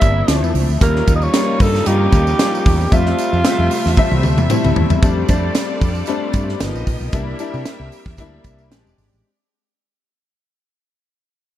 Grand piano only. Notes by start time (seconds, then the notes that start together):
Already playing: G3 A#3 D4 E4
0.28 F3 A3 C4 E4
0.81 G3 A#3 C#4 F4
1.34 G3 A#3 C#4 F4
1.86 G3 A#3 C#4 F4
2.39 G3 A#3 C#4 F4
2.92 G3 A3 C4 E5
3.45 G3 A3 C4 E5
3.97 G3 A3 C4 E5
4.50 G3 A3 C4 E4 E5
5.02 G3 A3 C4 D4
5.28 G3 A3 C4 D4
6.08 G3 A3 C4 D4
6.60 F3 A#3 B3 D#4
7.12 G3 A#3 D4 E4
7.39 G3 A#3 D4 E4
8.18 G3 A#3 D4 E4
8.71 G#3 C4 D4 G4